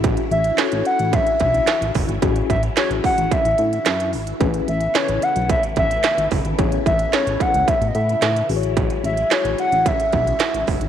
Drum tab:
HH |xxxxxxxxxxxxxxox|xxxxxxoxxxxxxxox|xxxxxxxxxxxxxxox|xxxxxxxxxxxxxxox|
CP |----x-------x---|----x-------x---|----x-------x---|----x-------x---|
SD |----o-------o---|----o-------o---|----o-------o---|----o-------o---|
BD |o-------o-o---o-|o-o---o-o-------|o-------o-o---o-|o-o---o-o-------|

HH |xxxxxxxxxxxxxxox|
CP |----x-------x---|
SD |----o-------o---|
BD |o-------o-o---o-|